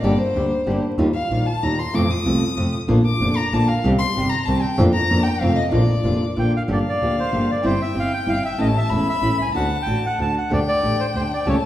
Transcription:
0.02 double bass G1, nylon-string guitar D3 G3 A#3 D4 G4, violin D5
0.18 violin C5
0.35 double bass D2, nylon-string guitar D3 G3 A#3 D4 G4
0.67 double bass G1, nylon-string guitar D3 G3 A#3 D4 G4
0.98 double bass D#2, nylon-string guitar D#3 G3 D#4 F4
1.13 violin F5
1.30 double bass A#1, nylon-string guitar D#3 G3 D#4 F4
1.46 violin A5
1.62 double bass D#2, nylon-string guitar D#3 G3 D#4 F4, violin A#5
1.78 double bass D#2, violin C6
1.93 double bass F2, nylon-string guitar C3 F3 A3 C4 F4, violin D6
2.11 violin D#6
2.26 double bass C2, nylon-string guitar C3 F3 A3 C4 F4
2.57 double bass F2, nylon-string guitar C3 F3 A3 C4 F4
2.88 double bass A#1, nylon-string guitar D3 A#3 D4 F4
3.06 violin D6
3.21 double bass F1, nylon-string guitar D3 A#3 D4 F4
3.36 violin A#5
3.52 double bass A#1, nylon-string guitar D3 A#3 D4 F4, violin A5
3.68 violin F5
3.84 double bass C2, nylon-string guitar C3 D#3 G3 C4 G4
3.98 violin C6
4.16 double bass G1, nylon-string guitar C3 D#3 G3 C4 G4
4.29 violin A#5
4.45 double bass C2, nylon-string guitar C3 D#3 G3, violin A5
4.49 nylon-string guitar C4 G4
4.62 violin G5
4.78 double bass F2, nylon-string guitar F3 A#3 D4 F4
4.93 violin A#5
5.10 double bass F2, nylon-string guitar F3 A#3 D4 F4
5.23 violin G5
5.40 double bass F2, nylon-string guitar C3 D#3 A3 C4 F4, violin F5
5.56 violin D#5
5.71 double bass A#1, nylon-string guitar D3 A#3 D4 F4, violin D5
6.04 double bass F1, nylon-string guitar D3 A#3 D4 F4
6.36 double bass A#1, nylon-string guitar D3 A#3 D4 F4, bandoneon G5
6.56 bandoneon F5
6.68 double bass G1, nylon-string guitar D3 F3 A#3 D4 G4, violin F5
6.73 bandoneon D5
6.89 bandoneon D5
7.02 double bass D2, nylon-string guitar D3 F3 A#3 D4 G4
7.19 bandoneon C5
7.32 double bass G1, nylon-string guitar D3 F3 A#3 D4 G4
7.51 bandoneon D5
7.63 double bass G1, nylon-string guitar G3 C4 E4, bandoneon C5, violin G5
7.82 bandoneon E5
7.94 double bass G1, nylon-string guitar G3 C4 E4
8.00 bandoneon F5
8.14 bandoneon G5
8.26 double bass G1, nylon-string guitar G3 C4 E4, bandoneon F5
8.44 double bass G1, bandoneon E5
8.58 double bass A1, nylon-string guitar E3 A3 C#4 E4, bandoneon D#5, violin A5
8.77 bandoneon E5
8.90 double bass E1, nylon-string guitar E3 A3 C#4 E4, violin B5
9.09 bandoneon E5
9.22 double bass A1, nylon-string guitar E3 A3 C#4 E4
9.39 double bass C2, bandoneon G#5
9.54 double bass D2, nylon-string guitar D3 A3 D4 F#4, bandoneon F#5, violin A5
9.82 nylon-string guitar D3, bandoneon G5
9.86 double bass A1, nylon-string guitar A3 D4 F#4
10.06 bandoneon F#5
10.19 double bass D2, nylon-string guitar D3 A3 D4 F#4, bandoneon A5
10.38 bandoneon F#5
10.50 double bass D2, nylon-string guitar D3 A3 D4 G4, bandoneon D5, violin G5
10.68 bandoneon D5
10.83 double bass A1, nylon-string guitar D3 A3 D4 G4
11.00 bandoneon C5
11.14 double bass D2, nylon-string guitar D3 A3 D4 G4, bandoneon C5
11.33 bandoneon D5
11.46 double bass C#2, nylon-string guitar C#3 E3 A3 C#4 G4, bandoneon C#5, violin A5

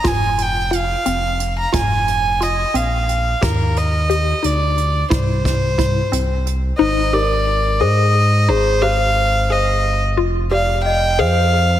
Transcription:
0.04 analog synth bass F1, synth arpeggio sound F4, violin G#5, kick, closed hi-hat
0.38 violin G5, closed hi-hat
0.71 synth arpeggio sound F4, closed hi-hat
0.76 violin F5
1.06 analog synth bass F1, synth arpeggio sound C4, closed hi-hat
1.40 closed hi-hat
1.59 violin A#5
1.73 analog synth bass F1, synth arpeggio sound F4, violin G#5, kick, closed hi-hat
2.08 closed hi-hat
2.41 synth arpeggio sound F4, violin D#5, closed hi-hat
2.74 analog synth bass A#1, synth arpeggio sound C4, violin F5, closed hi-hat
3.09 closed hi-hat
3.41 analog synth bass D#2, synth arpeggio sound G4, violin A#4, kick, closed hi-hat
3.76 violin D#5, closed hi-hat
4.10 synth arpeggio sound G4, closed hi-hat
4.43 analog synth bass D2, synth arpeggio sound D#4, violin D5, closed hi-hat
4.78 closed hi-hat
5.10 analog synth bass C2, synth arpeggio sound E4, violin C5, kick, closed hi-hat
5.45 kick, closed hi-hat
5.78 synth arpeggio sound E4, kick, closed hi-hat
6.12 analog synth bass C2, synth arpeggio sound C4, closed hi-hat
6.47 closed hi-hat
6.78 analog synth bass G#1, synth arpeggio sound D#4, celesta C5, violin D#5
7.13 synth arpeggio sound G4, celesta A#4, violin D5
7.80 analog synth bass G#2, synth arpeggio sound G#4, celesta C5, violin D#5
8.48 analog synth bass G#1, synth arpeggio sound D#4, celesta G#4, violin C5
8.82 synth arpeggio sound G4, celesta C5, violin F5
9.50 analog synth bass G1, synth arpeggio sound G#4, celesta C5, violin D#5
10.17 analog synth bass F1, synth arpeggio sound F4
10.51 synth arpeggio sound G4, celesta D5, violin F5
10.85 celesta D#5, violin G5
11.19 analog synth bass F2, synth arpeggio sound G#4, celesta C5, violin F5

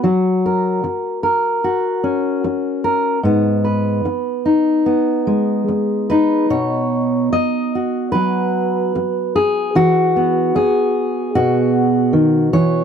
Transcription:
0.04 steel-string acoustic guitar F#3 F#4
0.46 steel-string acoustic guitar A#4
0.84 muted steel-string acoustic guitar stroke
1.23 steel-string acoustic guitar A#4
1.64 steel-string acoustic guitar F#4
2.04 steel-string acoustic guitar C#4
2.44 muted steel-string acoustic guitar stroke
2.84 steel-string acoustic guitar A#4
3.23 steel-string acoustic guitar G#2 B3
3.64 steel-string acoustic guitar B4
4.05 muted steel-string acoustic guitar stroke
4.45 steel-string acoustic guitar D#4
4.86 steel-string acoustic guitar B3
5.27 steel-string acoustic guitar G#3
5.68 muted steel-string acoustic guitar stroke
6.10 steel-string acoustic guitar D#4 B4
6.50 steel-string acoustic guitar B2 C#5
7.33 steel-string acoustic guitar D#5, muted steel-string acoustic guitar stroke
7.75 steel-string acoustic guitar F#4
8.12 steel-string acoustic guitar F#3 B4
8.95 muted steel-string acoustic guitar stroke
9.36 steel-string acoustic guitar G#4
9.75 steel-string acoustic guitar E3 F#4
10.16 steel-string acoustic guitar B3
10.55 steel-string acoustic guitar G#4, muted steel-string acoustic guitar stroke
11.35 steel-string acoustic guitar B2 F#4
12.13 steel-string acoustic guitar D#3
12.53 steel-string acoustic guitar E3 C#5

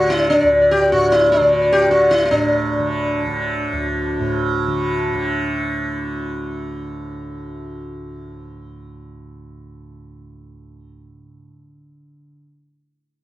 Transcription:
Already playing: tanpura D2 A2 D3, sitar F#4
0.10 sitar E4
0.20 sitar D5
0.30 sitar D4
0.40 tanpura D2, sitar D5
0.62 sitar D5
0.71 sitar G4
0.82 sitar D5
0.92 tanpura A2, sitar F#4
1.01 sitar D5
1.12 sitar E4
1.32 sitar D4
1.41 tanpura D3, sitar D5
1.52 sitar D5
1.62 sitar D5
1.72 sitar G4
1.81 sitar D5
1.88 tanpura D3, sitar F#4
2.11 sitar E4
2.26 sitar E4
2.31 tanpura A2, sitar D4
2.79 tanpura D3
3.26 tanpura D3
3.72 tanpura D2
4.20 tanpura A2
4.67 tanpura D3
5.13 tanpura D3

